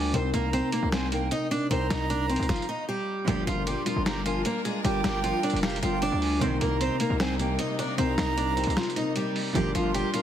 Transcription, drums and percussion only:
0.14 closed hi-hat medium
0.34 closed hi-hat medium
0.53 closed hi-hat medium
0.72 closed hi-hat medium
0.92 finger snap medium
0.92 snare loud
0.92 closed hi-hat medium
1.12 closed hi-hat medium
1.31 closed hi-hat medium
1.51 closed hi-hat medium
1.71 closed hi-hat medium
1.90 finger snap medium
1.90 snare loud
1.90 closed hi-hat medium
2.10 closed hi-hat medium
2.30 closed hi-hat medium
2.36 closed hi-hat medium
2.43 closed hi-hat medium
2.49 kick loud
2.49 snare medium
2.49 closed hi-hat medium
2.56 closed hi-hat medium
2.62 closed hi-hat medium
3.28 closed hi-hat medium
3.47 closed hi-hat medium
3.67 closed hi-hat medium
3.86 closed hi-hat medium
4.06 finger snap medium
4.06 snare loud
4.06 closed hi-hat medium
4.26 closed hi-hat medium
4.45 closed hi-hat medium
4.65 closed hi-hat medium
4.85 closed hi-hat medium
5.04 finger snap medium
5.04 snare loud
5.04 closed hi-hat medium
5.24 closed hi-hat medium
5.43 closed hi-hat medium
5.50 closed hi-hat medium
5.56 closed hi-hat medium
5.63 finger snap medium
5.63 snare loud
5.63 closed hi-hat medium
5.70 closed hi-hat medium
5.76 closed hi-hat medium
5.83 closed hi-hat medium
6.02 closed hi-hat medium
6.22 open hi-hat medium
6.41 closed hi-hat medium
6.61 closed hi-hat medium
6.81 closed hi-hat medium
7.00 closed hi-hat medium
7.20 finger snap medium
7.20 snare loud
7.20 closed hi-hat medium
7.39 closed hi-hat medium
7.59 closed hi-hat medium
7.79 closed hi-hat medium
7.98 closed hi-hat medium
8.18 finger snap medium
8.18 snare loud
8.18 closed hi-hat medium
8.38 closed hi-hat medium
8.57 closed hi-hat medium
8.64 closed hi-hat medium
8.70 closed hi-hat medium
8.77 finger snap medium
8.77 snare loud
8.77 closed hi-hat medium
8.83 closed hi-hat medium
8.90 closed hi-hat medium
8.96 closed hi-hat medium
9.16 closed hi-hat medium
9.36 open hi-hat medium
9.55 closed hi-hat medium
9.75 closed hi-hat medium
9.94 closed hi-hat medium
10.14 closed hi-hat medium

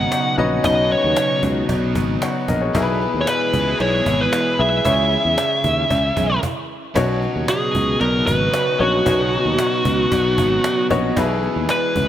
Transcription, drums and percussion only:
0.12 cajon slap loud
0.12 cowbell medium
0.38 cajon slap soft
0.64 cajon bass loud
0.64 cowbell medium
0.91 cajon slap soft
1.17 cajon slap loud
1.17 cowbell medium
1.43 cajon bass medium
1.69 cajon bass loud
1.69 cajon slap medium
1.69 cowbell medium
1.95 cajon bass loud
2.22 cajon slap loud
2.22 cowbell medium
2.48 cajon bass medium
2.75 cajon bass loud
2.75 cowbell medium
3.01 cajon slap soft
3.27 cajon slap loud
3.27 cowbell medium
3.54 cajon bass medium
3.80 cajon slap medium
3.80 cowbell medium
4.06 cajon bass loud
4.33 cajon slap loud
4.33 cowbell medium
4.59 cajon slap soft
4.85 cajon bass loud
4.85 cowbell medium
5.12 cajon slap soft
5.38 cajon slap loud
5.38 cowbell medium
5.64 cajon bass medium
5.90 cajon bass loud
5.90 cajon slap medium
5.90 cowbell medium
6.17 cajon bass loud
6.43 cajon bass loud
6.43 cajon slap medium
6.96 cajon bass loud
6.96 cowbell medium
7.22 cajon slap soft
7.48 cajon slap loud
7.48 cowbell medium
7.75 cajon bass medium
8.01 cajon slap medium
8.01 cowbell medium
8.27 cajon bass loud
8.54 cajon slap loud
8.54 cowbell medium
8.80 cajon slap soft
9.06 cajon bass loud
9.06 cowbell medium
9.32 cajon slap soft
9.59 cajon slap loud
9.59 cowbell medium
9.85 cajon bass medium
10.11 cajon bass loud
10.11 cajon slap medium
10.11 cowbell medium
10.38 cajon bass loud
10.64 cajon slap loud
10.64 cowbell medium
10.91 cajon bass medium
11.17 cajon bass loud
11.17 cowbell medium
11.43 cajon slap soft
11.69 cajon slap loud
11.69 cowbell medium
11.96 cajon bass medium

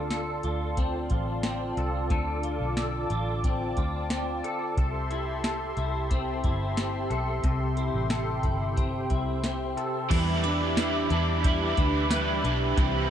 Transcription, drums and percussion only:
0.11 snare medium
0.11 closed hi-hat medium
0.43 closed hi-hat soft
0.77 kick medium
0.77 closed hi-hat medium
1.10 kick medium
1.10 closed hi-hat soft
1.43 snare loud
1.43 closed hi-hat medium
1.77 closed hi-hat soft
2.10 kick medium
2.10 closed hi-hat medium
2.43 closed hi-hat soft
2.77 snare medium
2.77 closed hi-hat medium
3.10 closed hi-hat soft
3.44 kick medium
3.44 closed hi-hat medium
3.77 kick medium
3.77 closed hi-hat soft
4.10 snare loud
4.10 closed hi-hat medium
4.44 closed hi-hat soft
4.77 kick loud
4.77 closed hi-hat medium
5.11 closed hi-hat soft
5.44 snare medium
5.44 closed hi-hat medium
5.77 closed hi-hat soft
6.11 kick medium
6.11 closed hi-hat medium
6.44 kick medium
6.44 closed hi-hat soft
6.77 snare loud
6.77 closed hi-hat medium
7.11 closed hi-hat soft
7.44 kick loud
7.44 closed hi-hat medium
7.77 closed hi-hat soft
8.10 snare medium
8.10 closed hi-hat medium
8.43 kick medium
8.43 closed hi-hat soft
8.77 kick medium
8.77 closed hi-hat medium
9.10 kick medium
9.10 closed hi-hat soft
9.44 snare loud
9.44 closed hi-hat medium
9.78 closed hi-hat soft
10.11 kick loud
10.11 closed hi-hat medium
10.11 crash medium
10.44 closed hi-hat medium
10.77 snare loud
10.77 closed hi-hat medium
10.77 tambourine medium
11.10 closed hi-hat soft
11.44 kick medium
11.44 closed hi-hat medium
11.77 kick medium
11.77 closed hi-hat medium
12.11 snare loud
12.11 closed hi-hat medium
12.11 tambourine medium
12.45 closed hi-hat medium
12.78 kick loud
12.78 closed hi-hat medium

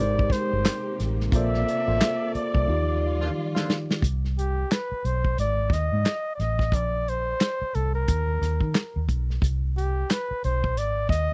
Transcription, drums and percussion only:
0.19 kick loud
0.30 kick loud
0.30 snare soft
0.30 closed hi-hat medium
0.65 snare loud
0.65 clap medium
0.65 closed hi-hat medium
1.00 snare soft
1.00 closed hi-hat medium
1.20 snare soft
1.32 kick loud
1.32 closed hi-hat medium
1.54 snare soft
1.68 closed hi-hat medium
2.01 snare loud
2.01 clap medium
2.01 closed hi-hat medium
2.35 closed hi-hat medium
2.55 kick medium
3.56 snare medium
3.70 snare loud
3.91 snare medium
4.02 kick loud
4.02 closed hi-hat medium
4.25 snare soft
4.39 closed hi-hat medium
4.71 snare loud
4.71 clap medium
4.71 closed hi-hat medium
5.05 closed hi-hat medium
5.25 kick medium
5.38 closed hi-hat medium
5.70 kick medium
5.70 snare soft
5.70 closed hi-hat medium
6.06 snare loud
6.06 clap medium
6.06 closed hi-hat medium
6.40 snare soft
6.40 closed hi-hat medium
6.59 kick medium
6.59 snare soft
6.72 kick loud
6.72 closed hi-hat medium
7.08 closed hi-hat medium
7.41 snare loud
7.41 clap medium
7.41 closed hi-hat medium
7.75 closed hi-hat medium
8.08 kick medium
8.08 closed hi-hat medium
8.42 snare soft
8.42 closed hi-hat medium
8.60 kick medium
8.75 snare loud
8.75 clap medium
8.75 closed hi-hat medium
9.09 kick medium
9.09 closed hi-hat medium
9.30 snare soft
9.42 kick loud
9.42 closed hi-hat medium
9.78 closed hi-hat medium
10.10 snare medium
10.10 clap medium
10.10 closed hi-hat medium
10.44 closed hi-hat medium
10.64 kick medium
10.77 closed hi-hat medium
11.09 kick medium
11.09 snare soft
11.09 closed hi-hat medium

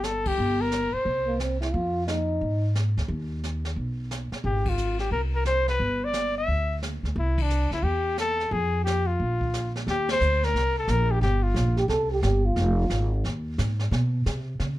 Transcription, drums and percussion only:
0.04 snare soft
0.04 hi-hat pedal medium
0.25 kick medium
0.25 ride medium
0.39 brush sweep soft
0.72 snare soft
0.72 hi-hat pedal soft
1.07 brush sweep soft
1.40 snare medium
1.40 hi-hat pedal soft
1.62 snare soft
1.73 brush sweep soft
2.08 snare soft
2.08 hi-hat pedal soft
2.42 brush sweep soft
2.75 snare medium
2.75 hi-hat pedal soft
2.98 snare soft
3.10 brush sweep soft
3.44 snare soft
3.44 hi-hat pedal soft
3.65 snare soft
3.78 brush sweep soft
4.11 snare medium
4.11 hi-hat pedal medium
4.32 snare soft
4.45 brush sweep soft
4.66 kick medium
4.66 ride medium
4.78 hi-hat pedal medium
4.99 snare soft
5.12 brush sweep soft
5.45 snare soft
5.45 hi-hat pedal soft
5.68 snare soft
5.80 brush sweep soft
6.13 snare soft
6.13 hi-hat pedal medium
6.48 brush sweep soft
6.83 snare medium
6.83 hi-hat pedal soft
7.05 snare soft
7.17 brush sweep soft
7.38 kick medium
7.38 ride medium
7.50 hi-hat pedal soft
7.72 snare soft
7.84 brush sweep soft
8.18 snare medium
8.18 hi-hat pedal medium
8.40 snare soft
8.52 brush sweep soft
8.87 snare soft
8.87 hi-hat pedal soft
9.20 brush sweep soft
9.41 kick medium
9.54 snare medium
9.54 hi-hat pedal medium
9.76 snare soft
9.88 brush sweep soft
9.88 snare soft
10.09 snare medium
10.09 ride medium
10.21 hi-hat pedal soft
10.43 snare soft
10.56 brush sweep soft
10.56 snare soft
10.88 snare medium
10.88 hi-hat pedal medium
11.23 brush sweep soft
11.23 snare soft
11.56 snare medium
11.56 hi-hat pedal soft
11.77 snare soft
11.89 brush sweep medium
11.89 snare soft
12.23 snare medium
12.23 hi-hat pedal medium
12.56 brush sweep soft
12.56 snare soft
12.90 snare medium
12.90 hi-hat pedal medium
13.25 brush sweep soft
13.25 snare soft
13.59 snare medium
13.59 hi-hat pedal medium
13.79 snare soft
13.92 brush sweep soft
13.92 snare soft
14.26 snare medium
14.26 hi-hat pedal soft
14.60 brush sweep soft
14.60 snare soft

